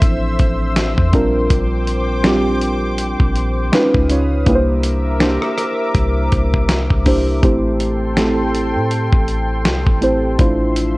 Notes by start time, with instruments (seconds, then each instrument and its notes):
Already playing: synth keys F3 C4 D4 E4 A4 C5, analog synth pad C5 E5 E6
0.02 808-style bass A1, kick, closed hi-hat
0.39 808-style bass A1, kick, closed hi-hat
0.76 snare, closed hi-hat
0.98 808-style bass E2, kick
1.12 808-style bass A#1, synth keys G3 C4 D4 F4 A#4, analog synth pad G5 D6, kick, closed hi-hat
1.50 808-style bass A#1, kick, closed hi-hat
1.87 closed hi-hat
2.23 synth keys G3 C4 D4 F4 G4, snare, closed hi-hat
2.62 closed hi-hat
2.98 closed hi-hat
3.20 808-style bass A#1, kick
3.36 closed hi-hat
3.72 synth keys G#3 C#4 D#4 F4 B4, analog synth pad B4 F5 D#6, snare, closed hi-hat
3.94 808-style bass C#2, kick
4.09 synth keys G#3 C#4 D#4 F4 C#5, closed hi-hat
4.46 808-style bass C2, synth keys A#3 D4 E4 G4 B4, analog synth pad A#4 E5 D6, kick, closed hi-hat
4.55 synth keys C5
4.84 closed hi-hat
5.20 synth keys A#3 D4 E4 G4 C5, snare, closed hi-hat
5.42 cross-stick
5.58 cross-stick, closed hi-hat
5.95 808-style bass C2, kick, closed hi-hat
6.32 808-style bass C2, kick, closed hi-hat
6.54 kick
6.69 snare, closed hi-hat
6.90 808-style bass C2, kick
7.05 synth keys A#3 D4 E4 G4 C5, kick, open hi-hat
7.42 808-style bass A1, synth keys A3 C4 E4 G4 C5, analog synth pad A4 G5 C6, kick, closed hi-hat
7.80 closed hi-hat
8.16 synth keys A3 C4 E4 G4 A4, snare, closed hi-hat
8.55 closed hi-hat
8.75 808-style bass A2
8.91 closed hi-hat
9.13 808-style bass A1, kick
9.28 closed hi-hat
9.65 808-style bass C2, snare, closed hi-hat
9.87 808-style bass A1, kick
10.01 synth keys A3 C4 E4 G4 C5, closed hi-hat
10.38 808-style bass A1, analog synth pad F3 E5 C6, synth keys A3 D4 E4 F4 C5, kick, closed hi-hat
10.76 closed hi-hat